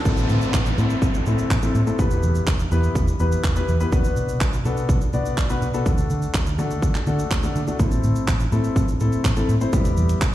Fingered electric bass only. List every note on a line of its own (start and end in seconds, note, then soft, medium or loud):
0.05 0.13 A1 loud
0.18 0.25 A1 medium
0.30 0.45 A2 medium
0.54 0.70 A1 loud
0.78 0.94 A2 loud
1.02 1.18 A1 loud
1.26 1.42 A2 loud
1.51 1.66 A1 loud
1.75 1.90 A2 medium
1.99 2.07 E1 medium
2.11 2.19 E1 medium
2.23 2.39 E2 loud
2.47 2.63 E1 loud
2.71 2.87 E2 loud
2.95 3.11 E1 medium
3.20 3.36 E2 medium
3.44 3.60 E1 loud
3.68 3.84 E2 medium
3.92 4.00 B1 loud
4.05 4.12 B1 medium
4.17 4.32 B2 medium
4.41 4.57 B1 loud
4.65 4.81 B2 loud
4.89 5.05 B1 loud
5.13 5.29 B2 medium
5.38 5.53 B1 loud
5.62 5.77 B2 loud
5.86 5.94 D2 medium
5.98 6.06 D2 medium
6.10 6.26 D3 loud
6.34 6.58 D2 loud
6.58 6.82 D3 loud
6.82 6.98 D2 loud
7.07 7.23 D3 loud
7.31 7.47 D2 loud
7.55 7.71 D3 medium
7.80 7.87 A1 loud
7.92 7.99 A1 medium
8.04 8.19 A2 medium
8.28 8.44 A1 loud
8.52 8.68 A2 loud
8.76 8.92 A1 loud
9.00 9.16 A2 loud
9.25 9.40 A1 loud
9.49 9.65 A2 medium
9.73 9.81 E1 loud
9.85 9.93 E1 medium
9.97 10.13 E2 medium
10.22 10.35 E1 loud